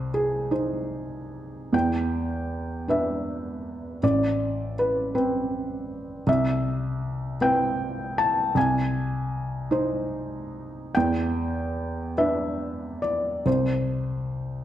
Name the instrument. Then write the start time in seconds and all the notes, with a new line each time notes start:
felt piano
Already playing: C2 C5
0.14 G#4
0.51 D#4 C5
1.73 E2 G5
2.88 D4 B4 E5
4.03 A1 D5
4.79 B4
5.15 C4 B4
6.27 C2 E5
7.41 C4 B4 G5
8.18 A5
8.55 C2 G#5
9.71 D#4 C5
10.95 E2 G5
12.18 D4 B4 E5
13.02 D5
13.46 C2 C5